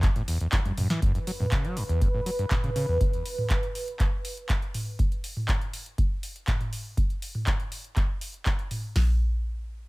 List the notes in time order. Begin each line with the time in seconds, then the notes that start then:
0.03 F#2, kick, clap, closed hi-hat
0.16 A2, closed hi-hat
0.28 E2, open hi-hat
0.41 E2, closed hi-hat
0.52 F#2, kick, snare, clap, closed hi-hat
0.65 F#2, closed hi-hat, high tom
0.78 F#2, mid tom, open hi-hat
0.90 E3, snare, closed hi-hat
1.02 F#2 B4, kick, closed hi-hat
1.15 F#2, closed hi-hat
1.27 F#3, open hi-hat
1.40 F#2, mid tom
1.52 C#3, kick, clap, closed hi-hat
1.65 F#3, closed hi-hat
1.77 F#2, open hi-hat
1.89 E2, closed hi-hat
2.01 F#2, kick, closed hi-hat
2.14 A2
2.26 F#3, open hi-hat
2.39 G2, closed hi-hat
2.51 C#3, kick, clap, closed hi-hat, mid tom
2.64 C#3, closed hi-hat, mid tom
2.76 C#3, open hi-hat
2.89 E2
3.01 kick, closed hi-hat
3.13 closed hi-hat
3.26 open hi-hat
3.38 mid tom
3.50 kick, clap, closed hi-hat
3.63 closed hi-hat
3.75 open hi-hat
3.88 closed hi-hat
4.00 kick, clap, closed hi-hat
4.25 open hi-hat
4.37 closed hi-hat
4.49 kick, clap, closed hi-hat
4.62 closed hi-hat
4.74 mid tom, open hi-hat
4.99 kick, closed hi-hat
5.12 closed hi-hat
5.24 open hi-hat
5.37 mid tom
5.48 kick, clap, closed hi-hat
5.61 closed hi-hat
5.73 open hi-hat
5.86 closed hi-hat
5.98 kick, closed hi-hat
6.23 open hi-hat
6.36 closed hi-hat
6.47 kick, clap, closed hi-hat, mid tom
6.61 closed hi-hat, mid tom
6.73 open hi-hat
6.97 kick, closed hi-hat
7.10 closed hi-hat
7.22 open hi-hat
7.35 mid tom
7.47 kick, clap, closed hi-hat
7.60 closed hi-hat
7.72 open hi-hat
7.84 closed hi-hat
7.96 kick, clap, closed hi-hat
8.21 open hi-hat
8.34 closed hi-hat
8.46 kick, clap, closed hi-hat
8.59 closed hi-hat
8.71 mid tom, open hi-hat
8.96 kick, snare, open hi-hat